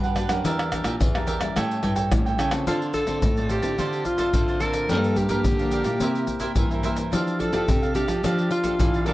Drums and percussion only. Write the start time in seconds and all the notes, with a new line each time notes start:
0.04 pandeiro, shaker
0.16 pandeiro, tamborim, shaker
0.29 pandeiro, tamborim, shaker
0.45 pandeiro, shaker, surdo
0.59 pandeiro, tamborim, shaker
0.72 pandeiro, tamborim, shaker, surdo
0.84 pandeiro, tamborim, shaker, surdo
1.01 pandeiro, shaker, surdo
1.15 pandeiro, tamborim, shaker
1.27 pandeiro, shaker
1.41 pandeiro, tamborim, shaker, surdo
1.56 pandeiro, tamborim, shaker, surdo
1.71 pandeiro, shaker
1.83 pandeiro, surdo
1.96 pandeiro, shaker, surdo
2.12 pandeiro, tamborim, shaker, surdo
2.27 pandeiro, shaker
2.39 pandeiro, tamborim, shaker
2.51 pandeiro, tamborim, shaker
2.67 pandeiro, shaker, surdo
2.82 pandeiro, shaker
2.94 pandeiro, shaker, surdo
3.07 pandeiro, shaker, surdo
3.22 pandeiro, shaker, surdo
3.37 pandeiro, shaker
3.49 pandeiro, shaker
3.63 pandeiro, shaker, surdo
3.79 pandeiro, shaker, surdo
3.93 pandeiro, shaker
4.05 pandeiro, shaker, surdo
4.18 pandeiro, shaker, surdo
4.33 pandeiro, shaker, surdo
4.48 pandeiro, shaker
4.60 pandeiro, shaker
4.73 pandeiro, shaker
4.89 pandeiro, shaker, surdo
5.04 pandeiro, shaker
5.16 pandeiro, shaker, surdo
5.29 pandeiro, shaker, surdo
5.44 pandeiro, shaker, surdo
5.59 pandeiro, shaker
5.71 pandeiro, shaker
5.84 pandeiro, shaker, surdo
6.00 pandeiro, shaker, surdo
6.15 pandeiro, shaker
6.27 pandeiro, shaker, surdo
6.40 pandeiro, shaker, surdo
6.56 pandeiro, shaker, surdo
6.71 pandeiro, shaker
6.83 pandeiro, shaker
6.96 pandeiro, shaker
7.13 pandeiro, shaker, surdo
7.27 pandeiro, shaker
7.40 pandeiro, surdo
7.53 pandeiro, shaker, surdo
7.68 pandeiro, shaker, surdo
7.83 pandeiro, shaker
7.95 pandeiro, shaker
8.08 pandeiro, shaker, surdo
8.24 pandeiro, shaker, surdo
8.38 pandeiro, shaker
8.51 pandeiro
8.64 pandeiro, shaker, surdo
8.79 pandeiro, shaker, surdo
8.94 pandeiro, shaker
9.06 pandeiro